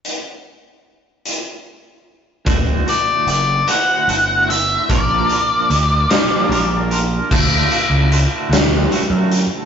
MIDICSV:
0, 0, Header, 1, 5, 480
1, 0, Start_track
1, 0, Tempo, 805369
1, 26, Time_signature, 6, 3, 24, 8
1, 5753, End_track
2, 0, Start_track
2, 0, Title_t, "Lead electric guitar"
2, 0, Program_c, 0, 29
2, 1724, Note_on_c, 0, 74, 71
2, 1958, Note_off_c, 0, 74, 0
2, 1965, Note_on_c, 0, 74, 72
2, 2183, Note_off_c, 0, 74, 0
2, 2208, Note_on_c, 0, 78, 92
2, 2680, Note_off_c, 0, 78, 0
2, 2682, Note_on_c, 0, 76, 78
2, 2923, Note_on_c, 0, 74, 77
2, 2925, Note_off_c, 0, 76, 0
2, 4093, Note_off_c, 0, 74, 0
2, 5753, End_track
3, 0, Start_track
3, 0, Title_t, "Clean electric guitar"
3, 0, Program_c, 1, 27
3, 1461, Note_on_c, 1, 38, 77
3, 1464, Note_on_c, 1, 45, 86
3, 1468, Note_on_c, 1, 50, 81
3, 1471, Note_on_c, 1, 57, 91
3, 1472, Note_on_c, 1, 66, 100
3, 1697, Note_off_c, 1, 66, 0
3, 1704, Note_off_c, 1, 57, 0
3, 1704, Note_on_c, 1, 66, 59
3, 1710, Note_off_c, 1, 50, 0
3, 1711, Note_on_c, 1, 57, 61
3, 1717, Note_on_c, 1, 50, 52
3, 1947, Note_off_c, 1, 38, 0
3, 1949, Note_off_c, 1, 45, 0
3, 2182, Note_off_c, 1, 66, 0
3, 2183, Note_off_c, 1, 57, 0
3, 2187, Note_off_c, 1, 50, 0
3, 2189, Note_on_c, 1, 66, 78
3, 2191, Note_on_c, 1, 57, 74
3, 2194, Note_on_c, 1, 50, 74
3, 2197, Note_on_c, 1, 38, 65
3, 2197, Note_on_c, 1, 45, 68
3, 2419, Note_off_c, 1, 45, 0
3, 2425, Note_off_c, 1, 50, 0
3, 2426, Note_on_c, 1, 45, 68
3, 2431, Note_off_c, 1, 57, 0
3, 2432, Note_off_c, 1, 66, 0
3, 2432, Note_on_c, 1, 50, 72
3, 2438, Note_on_c, 1, 57, 78
3, 2439, Note_on_c, 1, 66, 74
3, 2658, Note_off_c, 1, 66, 0
3, 2665, Note_on_c, 1, 66, 72
3, 2666, Note_off_c, 1, 57, 0
3, 2671, Note_off_c, 1, 50, 0
3, 2673, Note_on_c, 1, 57, 57
3, 2676, Note_off_c, 1, 38, 0
3, 2678, Note_on_c, 1, 50, 56
3, 2895, Note_off_c, 1, 66, 0
3, 2896, Note_off_c, 1, 45, 0
3, 2899, Note_off_c, 1, 57, 0
3, 2901, Note_off_c, 1, 50, 0
3, 2911, Note_on_c, 1, 46, 90
3, 2915, Note_on_c, 1, 53, 85
3, 2916, Note_on_c, 1, 58, 88
3, 2919, Note_on_c, 1, 65, 94
3, 2920, Note_on_c, 1, 62, 94
3, 2926, Note_on_c, 1, 70, 91
3, 3145, Note_off_c, 1, 70, 0
3, 3151, Note_off_c, 1, 65, 0
3, 3152, Note_on_c, 1, 70, 68
3, 3155, Note_off_c, 1, 62, 0
3, 3158, Note_off_c, 1, 58, 0
3, 3159, Note_on_c, 1, 65, 57
3, 3162, Note_on_c, 1, 62, 53
3, 3165, Note_on_c, 1, 58, 56
3, 3392, Note_off_c, 1, 46, 0
3, 3394, Note_off_c, 1, 53, 0
3, 3625, Note_off_c, 1, 70, 0
3, 3630, Note_off_c, 1, 62, 0
3, 3630, Note_off_c, 1, 65, 0
3, 3631, Note_off_c, 1, 58, 0
3, 3632, Note_on_c, 1, 70, 87
3, 3637, Note_on_c, 1, 62, 72
3, 3637, Note_on_c, 1, 65, 78
3, 3638, Note_on_c, 1, 58, 75
3, 3642, Note_on_c, 1, 46, 72
3, 3642, Note_on_c, 1, 53, 73
3, 3865, Note_off_c, 1, 58, 0
3, 3870, Note_off_c, 1, 62, 0
3, 3872, Note_on_c, 1, 58, 68
3, 3877, Note_off_c, 1, 65, 0
3, 3877, Note_on_c, 1, 62, 72
3, 3878, Note_off_c, 1, 70, 0
3, 3884, Note_on_c, 1, 65, 69
3, 3885, Note_on_c, 1, 70, 77
3, 4109, Note_off_c, 1, 70, 0
3, 4115, Note_off_c, 1, 65, 0
3, 4116, Note_on_c, 1, 70, 73
3, 4117, Note_off_c, 1, 46, 0
3, 4117, Note_off_c, 1, 53, 0
3, 4119, Note_off_c, 1, 62, 0
3, 4121, Note_off_c, 1, 58, 0
3, 4123, Note_on_c, 1, 65, 68
3, 4126, Note_on_c, 1, 62, 62
3, 4128, Note_on_c, 1, 58, 53
3, 4339, Note_off_c, 1, 70, 0
3, 4343, Note_off_c, 1, 65, 0
3, 4344, Note_off_c, 1, 62, 0
3, 4345, Note_off_c, 1, 58, 0
3, 4349, Note_on_c, 1, 38, 94
3, 4357, Note_on_c, 1, 45, 89
3, 4358, Note_on_c, 1, 50, 92
3, 4361, Note_on_c, 1, 57, 100
3, 4364, Note_on_c, 1, 66, 97
3, 4584, Note_off_c, 1, 66, 0
3, 4589, Note_off_c, 1, 57, 0
3, 4591, Note_on_c, 1, 66, 65
3, 4596, Note_on_c, 1, 57, 53
3, 4821, Note_off_c, 1, 45, 0
3, 4828, Note_off_c, 1, 50, 0
3, 4829, Note_off_c, 1, 38, 0
3, 4829, Note_on_c, 1, 45, 64
3, 4834, Note_off_c, 1, 57, 0
3, 4835, Note_on_c, 1, 50, 73
3, 4836, Note_off_c, 1, 66, 0
3, 4841, Note_on_c, 1, 57, 73
3, 4843, Note_on_c, 1, 66, 77
3, 5065, Note_off_c, 1, 66, 0
3, 5066, Note_off_c, 1, 57, 0
3, 5069, Note_off_c, 1, 50, 0
3, 5073, Note_off_c, 1, 45, 0
3, 5073, Note_on_c, 1, 57, 72
3, 5073, Note_on_c, 1, 66, 81
3, 5077, Note_on_c, 1, 50, 71
3, 5080, Note_on_c, 1, 45, 66
3, 5082, Note_on_c, 1, 38, 70
3, 5305, Note_off_c, 1, 45, 0
3, 5309, Note_off_c, 1, 50, 0
3, 5312, Note_on_c, 1, 45, 75
3, 5314, Note_off_c, 1, 57, 0
3, 5316, Note_on_c, 1, 50, 68
3, 5317, Note_off_c, 1, 66, 0
3, 5321, Note_on_c, 1, 57, 76
3, 5324, Note_on_c, 1, 66, 77
3, 5554, Note_off_c, 1, 38, 0
3, 5753, Note_off_c, 1, 45, 0
3, 5753, Note_off_c, 1, 50, 0
3, 5753, Note_off_c, 1, 57, 0
3, 5753, Note_off_c, 1, 66, 0
3, 5753, End_track
4, 0, Start_track
4, 0, Title_t, "Picked electric bass"
4, 0, Program_c, 2, 34
4, 1468, Note_on_c, 2, 26, 70
4, 1675, Note_off_c, 2, 26, 0
4, 1948, Note_on_c, 2, 30, 86
4, 2155, Note_off_c, 2, 30, 0
4, 2429, Note_on_c, 2, 31, 83
4, 2841, Note_off_c, 2, 31, 0
4, 2918, Note_on_c, 2, 34, 77
4, 3121, Note_off_c, 2, 34, 0
4, 3397, Note_on_c, 2, 38, 85
4, 3600, Note_off_c, 2, 38, 0
4, 3870, Note_on_c, 2, 34, 100
4, 4281, Note_off_c, 2, 34, 0
4, 4359, Note_on_c, 2, 38, 83
4, 4561, Note_off_c, 2, 38, 0
4, 4707, Note_on_c, 2, 37, 73
4, 4913, Note_off_c, 2, 37, 0
4, 5062, Note_on_c, 2, 38, 92
4, 5270, Note_off_c, 2, 38, 0
4, 5423, Note_on_c, 2, 42, 81
4, 5630, Note_off_c, 2, 42, 0
4, 5753, End_track
5, 0, Start_track
5, 0, Title_t, "Drums"
5, 29, Note_on_c, 9, 42, 49
5, 89, Note_off_c, 9, 42, 0
5, 748, Note_on_c, 9, 42, 58
5, 808, Note_off_c, 9, 42, 0
5, 1468, Note_on_c, 9, 42, 66
5, 1470, Note_on_c, 9, 36, 99
5, 1527, Note_off_c, 9, 42, 0
5, 1529, Note_off_c, 9, 36, 0
5, 1715, Note_on_c, 9, 42, 56
5, 1775, Note_off_c, 9, 42, 0
5, 1953, Note_on_c, 9, 42, 59
5, 2012, Note_off_c, 9, 42, 0
5, 2191, Note_on_c, 9, 42, 88
5, 2251, Note_off_c, 9, 42, 0
5, 2437, Note_on_c, 9, 42, 61
5, 2496, Note_off_c, 9, 42, 0
5, 2682, Note_on_c, 9, 42, 64
5, 2742, Note_off_c, 9, 42, 0
5, 2918, Note_on_c, 9, 36, 90
5, 2918, Note_on_c, 9, 42, 72
5, 2978, Note_off_c, 9, 36, 0
5, 2978, Note_off_c, 9, 42, 0
5, 3155, Note_on_c, 9, 42, 58
5, 3215, Note_off_c, 9, 42, 0
5, 3400, Note_on_c, 9, 42, 57
5, 3460, Note_off_c, 9, 42, 0
5, 3639, Note_on_c, 9, 42, 78
5, 3642, Note_on_c, 9, 38, 104
5, 3699, Note_off_c, 9, 42, 0
5, 3702, Note_off_c, 9, 38, 0
5, 3885, Note_on_c, 9, 42, 54
5, 3945, Note_off_c, 9, 42, 0
5, 4120, Note_on_c, 9, 42, 52
5, 4180, Note_off_c, 9, 42, 0
5, 4358, Note_on_c, 9, 36, 99
5, 4358, Note_on_c, 9, 49, 88
5, 4417, Note_off_c, 9, 36, 0
5, 4418, Note_off_c, 9, 49, 0
5, 4597, Note_on_c, 9, 42, 58
5, 4656, Note_off_c, 9, 42, 0
5, 4839, Note_on_c, 9, 42, 60
5, 4899, Note_off_c, 9, 42, 0
5, 5082, Note_on_c, 9, 42, 86
5, 5085, Note_on_c, 9, 38, 104
5, 5141, Note_off_c, 9, 42, 0
5, 5144, Note_off_c, 9, 38, 0
5, 5316, Note_on_c, 9, 42, 59
5, 5375, Note_off_c, 9, 42, 0
5, 5552, Note_on_c, 9, 42, 58
5, 5611, Note_off_c, 9, 42, 0
5, 5753, End_track
0, 0, End_of_file